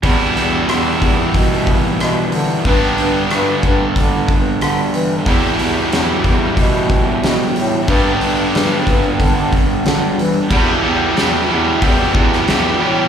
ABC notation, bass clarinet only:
X:1
M:4/4
L:1/8
Q:1/4=92
K:Em
V:1 name="Bass clarinet" clef=bass
E,, E,, E,, E,, B,,2 B,, D, | G,, G,, G,, G,, D, z D, E, | E,, E,, E,, E,, B,,2 B,, A,, | G,, G,, G,, G,, D, z D, E, |
E,, E,, E,, E,, E,, E,, E,, A,, |]